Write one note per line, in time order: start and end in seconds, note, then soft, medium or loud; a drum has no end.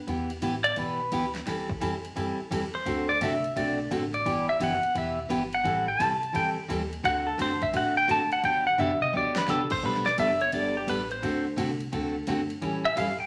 0.07 0.41 E2 medium
0.07 0.29 E3 medium
0.07 0.29 B3 medium
0.07 0.30 E4 medium
0.07 0.30 G4 medium
0.07 kick soft
0.07 ride medium
0.30 ride medium
0.42 0.76 A1 medium
0.42 0.53 E3 medium
0.42 0.54 B3 medium
0.42 0.54 E4 medium
0.42 0.54 G4 medium
0.42 kick soft
0.42 hi-hat pedal medium
0.42 ride medium
0.64 0.76 D5 medium
0.64 ride medium
0.76 1.11 B1 medium
0.76 0.99 E3 medium
0.76 0.99 B3 medium
0.76 0.99 E4 medium
0.76 0.99 G4 medium
0.76 1.31 B4 medium
0.76 kick soft
0.76 ride medium
1.12 1.46 D2 medium
1.12 1.23 E3 medium
1.12 1.24 B3 medium
1.12 1.24 E4 medium
1.12 1.24 G4 medium
1.12 kick soft
1.12 hi-hat pedal medium
1.12 ride medium
1.35 snare soft
1.35 ride medium
1.46 1.81 E2 medium
1.46 1.68 E3 medium
1.46 1.68 G3 medium
1.46 1.69 C4 medium
1.46 1.69 E4 medium
1.46 1.69 A4 medium
1.46 kick soft
1.46 snare soft
1.46 ride medium
1.69 kick medium
1.80 2.15 F2 medium
1.80 1.92 E3 medium
1.80 1.93 G3 medium
1.80 1.93 C4 medium
1.80 1.93 E4 medium
1.80 1.93 A4 medium
1.80 kick soft
1.80 hi-hat pedal medium
1.80 ride medium
2.05 ride medium
2.15 2.37 F#2 medium
2.15 2.38 E3 medium
2.15 2.38 G3 medium
2.15 2.38 C4 medium
2.15 2.38 E4 medium
2.15 2.38 A4 medium
2.15 kick soft
2.15 ride medium
2.40 muted upright bass stroke soft
2.51 2.85 E2 medium
2.51 2.62 E3 medium
2.51 2.62 G3 medium
2.51 2.63 C4 medium
2.51 2.63 E4 medium
2.51 2.63 A4 medium
2.51 kick soft
2.51 hi-hat pedal medium
2.51 ride medium
2.75 3.07 C5 medium
2.85 3.20 D2 medium
2.85 3.07 D3 medium
2.85 3.08 A3 medium
2.85 3.08 C4 medium
2.85 3.08 F#4 medium
2.85 3.08 A4 medium
2.85 kick soft
2.85 ride medium
3.09 3.21 D5 medium
3.21 3.55 C2 medium
3.21 3.33 D3 medium
3.21 3.32 A3 medium
3.21 3.33 C4 medium
3.21 3.33 F#4 medium
3.21 3.33 A4 medium
3.21 3.54 E5 medium
3.21 kick soft
3.21 hi-hat pedal medium
3.21 ride medium
3.44 ride medium
3.56 3.90 B1 medium
3.56 3.78 D3 medium
3.56 3.78 A3 medium
3.56 3.78 C4 medium
3.56 3.78 F#4 medium
3.56 3.78 A4 medium
3.56 3.78 D5 medium
3.56 kick soft
3.56 ride medium
3.91 4.25 A1 medium
3.91 4.02 D3 medium
3.91 4.02 A3 medium
3.91 4.02 C4 medium
3.91 4.03 F#4 medium
3.91 4.03 A4 medium
3.91 kick soft
3.91 hi-hat pedal medium
3.91 ride medium
4.14 4.46 D5 medium
4.14 ride soft
4.25 4.60 G1 medium
4.25 4.47 E3 medium
4.25 4.47 B3 medium
4.25 4.47 E4 medium
4.25 4.48 G4 medium
4.25 kick soft
4.25 ride medium
4.49 4.60 E5 medium
4.60 4.82 F#1 medium
4.60 4.72 E3 medium
4.60 4.72 B3 medium
4.60 4.72 E4 medium
4.60 4.72 G4 medium
4.60 kick soft
4.60 hi-hat pedal medium
4.60 ride medium
4.64 4.97 F#5 medium
4.83 muted upright bass stroke soft
4.83 ride medium
4.95 5.29 E1 medium
4.95 5.17 E3 medium
4.95 5.17 B3 medium
4.95 5.17 E4 medium
4.95 5.17 G4 medium
4.95 5.19 E5 medium
4.95 kick soft
4.95 ride medium
5.29 5.64 G1 medium
5.29 5.41 E3 medium
5.29 5.41 B3 medium
5.29 5.41 E4 medium
5.29 5.42 G4 medium
5.29 kick soft
5.29 hi-hat pedal medium
5.29 ride medium
5.53 5.86 F#5 medium
5.53 ride soft
5.63 5.99 A1 medium
5.63 5.86 E3 medium
5.63 5.86 G3 medium
5.63 5.86 C4 medium
5.63 5.87 E4 medium
5.63 5.87 A4 medium
5.63 kick soft
5.63 ride medium
5.88 6.01 G5 loud
5.99 6.34 C2 medium
5.99 6.11 E3 medium
5.99 6.11 G3 medium
5.99 6.11 C4 medium
5.99 6.12 E4 medium
5.99 6.12 A4 medium
5.99 6.35 A5 loud
5.99 kick soft
5.99 hi-hat pedal medium
5.99 ride medium
6.23 ride soft
6.33 6.69 G2 medium
6.33 6.56 E3 medium
6.33 6.56 G3 medium
6.33 6.56 C4 medium
6.33 6.56 E4 medium
6.33 6.56 A4 medium
6.33 6.49 G5 medium
6.33 kick soft
6.33 ride medium
6.68 7.04 D#2 loud
6.68 6.81 E3 medium
6.68 6.81 G3 medium
6.68 6.81 C4 medium
6.68 6.81 E4 medium
6.68 6.81 A4 medium
6.68 kick soft
6.68 hi-hat pedal medium
6.68 ride medium
6.93 ride soft
7.03 7.38 D2 medium
7.03 7.26 D3 medium
7.03 7.26 A3 medium
7.03 7.26 C4 medium
7.03 7.26 F#4 medium
7.03 7.26 A4 medium
7.03 7.27 F#5 medium
7.03 kick soft
7.03 ride medium
7.27 7.39 A4 soft
7.38 7.73 F#2 medium
7.38 7.50 D3 medium
7.38 7.50 A3 medium
7.38 7.50 C4 medium
7.38 7.50 F#4 medium
7.38 7.51 A4 medium
7.38 kick soft
7.38 hi-hat pedal medium
7.38 ride medium
7.42 7.62 C5 medium
7.62 7.74 E5 medium
7.62 kick medium
7.62 ride medium
7.73 8.08 A2 medium
7.73 7.95 D3 medium
7.73 7.96 A3 medium
7.73 7.96 C4 medium
7.73 7.96 F#4 medium
7.73 7.96 A4 medium
7.73 7.97 F#5 medium
7.73 kick soft
7.73 ride medium
7.97 8.09 G5 loud
8.07 8.30 G#2 medium
8.07 8.20 D3 medium
8.07 8.20 A3 medium
8.07 8.20 C4 medium
8.07 8.20 F#4 medium
8.07 8.20 A4 medium
8.07 8.32 A5 loud
8.07 kick soft
8.07 hi-hat pedal medium
8.07 ride medium
8.32 8.44 F#5 loud
8.32 muted upright bass stroke soft
8.32 ride medium
8.43 8.78 G2 medium
8.43 8.65 D3 medium
8.43 8.66 F#3 medium
8.43 8.66 B3 medium
8.43 8.66 D4 medium
8.43 8.66 G4 medium
8.43 8.66 G5 medium
8.43 kick soft
8.43 ride medium
8.67 8.79 F#5 medium
8.78 9.00 F#2 medium
8.78 8.90 D3 medium
8.78 8.90 F#3 medium
8.78 8.90 B3 medium
8.78 8.90 D4 medium
8.78 8.91 G4 medium
8.78 9.01 E5 medium
8.78 hi-hat pedal medium
8.78 mid tom medium
9.01 9.14 D#5 medium
9.01 muted upright bass stroke soft
9.01 mid tom medium
9.13 9.47 D2 medium
9.13 9.35 D3 medium
9.13 9.35 F#3 medium
9.13 9.36 B3 medium
9.13 9.36 D4 medium
9.13 9.36 G4 medium
9.13 high tom medium
9.17 9.37 D5 medium
9.36 9.49 B4 medium
9.36 snare loud
9.48 9.82 C2 medium
9.48 9.60 D3 medium
9.48 9.60 F#3 medium
9.48 9.60 B3 medium
9.48 9.60 D4 medium
9.48 9.60 G4 medium
9.48 9.71 A4 medium
9.48 snare medium
9.48 hi-hat pedal medium
9.70 9.83 C5 medium
9.70 kick medium
9.70 crash medium
9.83 10.17 B1 medium
9.83 10.05 G3 medium
9.83 10.06 B3 medium
9.83 10.06 D4 medium
9.83 10.06 A4 medium
9.83 10.07 B4 medium
9.83 kick soft
9.94 snare soft
10.06 10.18 D5 medium
10.06 snare soft
10.17 10.52 F#1 medium
10.17 10.30 G3 medium
10.17 10.30 B3 medium
10.17 10.30 D4 medium
10.17 10.30 A4 medium
10.17 10.41 E5 medium
10.17 kick soft
10.17 hi-hat pedal medium
10.17 ride medium
10.41 10.53 C#5 medium
10.41 ride soft
10.52 10.87 G1 medium
10.52 10.75 G3 medium
10.52 10.75 B3 medium
10.52 10.75 D4 medium
10.52 10.75 A4 medium
10.52 10.75 D5 medium
10.52 kick soft
10.52 ride medium
10.77 10.88 G4 medium
10.87 11.22 A1 medium
10.87 10.99 G3 medium
10.87 10.99 B3 medium
10.87 11.00 D4 medium
10.87 11.00 A4 medium
10.87 11.11 B4 medium
10.87 kick soft
10.87 hi-hat pedal medium
10.87 ride medium
11.11 11.44 C5 medium
11.11 ride soft
11.22 11.57 D2 medium
11.22 11.45 D3 medium
11.22 11.45 A3 medium
11.22 11.45 C4 medium
11.22 11.45 F#4 medium
11.22 11.45 A4 medium
11.22 kick soft
11.22 ride medium
11.56 11.92 C2 medium
11.56 11.69 D3 medium
11.56 11.69 A3 medium
11.56 11.69 C4 medium
11.56 11.70 F#4 medium
11.56 11.70 A4 medium
11.56 kick soft
11.56 hi-hat pedal medium
11.56 ride medium
11.80 ride medium
11.92 12.27 D2 medium
11.92 12.14 D3 medium
11.92 12.15 A3 medium
11.92 12.15 C4 medium
11.92 12.15 F#4 medium
11.92 12.15 A4 medium
11.92 kick soft
11.92 ride medium
12.27 12.62 F#2 medium
12.27 12.39 D3 medium
12.27 12.39 A3 medium
12.27 12.39 C4 medium
12.27 12.40 F#4 medium
12.27 12.40 A4 medium
12.27 kick soft
12.27 hi-hat pedal medium
12.27 ride medium
12.50 ride medium
12.61 12.96 A2 medium
12.61 12.84 E3 medium
12.61 12.84 G3 medium
12.61 12.84 C#4 medium
12.61 12.84 E4 medium
12.61 12.85 A4 medium
12.61 kick soft
12.61 ride medium
12.85 12.97 E5 medium
12.95 13.19 G2 medium
12.95 13.08 E3 medium
12.95 13.08 G3 medium
12.95 13.09 C#4 medium
12.95 13.09 E4 medium
12.95 13.09 A4 medium
12.95 13.20 F5 medium
12.95 kick soft
12.95 hi-hat pedal medium
12.95 ride medium
13.20 13.27 G5 medium
13.20 muted upright bass stroke soft